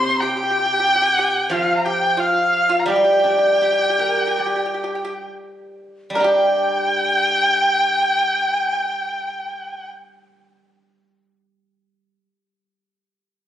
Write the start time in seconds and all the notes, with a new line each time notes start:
Already playing: C3 C6
0.03 C5
0.09 C5
0.15 A#5
0.21 G4 G5
0.29 G4
0.37 G4
0.43 G4
0.50 G4
0.59 G4
0.66 G4
0.73 G4
0.80 G4
0.88 G4
0.95 G4
1.02 G4
1.19 G4
1.50 F3 F4 F5
1.77 A#5
1.85 G4 G5
2.17 F4 F5
2.69 F4
2.79 A#5
2.86 G3 G4 G5
2.90 G5
2.96 G4
3.04 G4
3.13 G4
3.19 G4
3.24 D4
3.29 G4
3.38 G4
3.46 G4
3.55 G4
3.61 G4
3.72 G4
3.79 G4
3.90 G4
3.99 G4 A#4
4.07 G4
4.17 G4
4.27 G4
4.37 G4 D5
4.46 G4
4.56 G4
4.66 G4
4.74 G4
4.84 G4
4.95 G4
5.05 G4
6.10 G3 A#5
6.15 D4 A#4
6.20 G4 G5
6.24 G4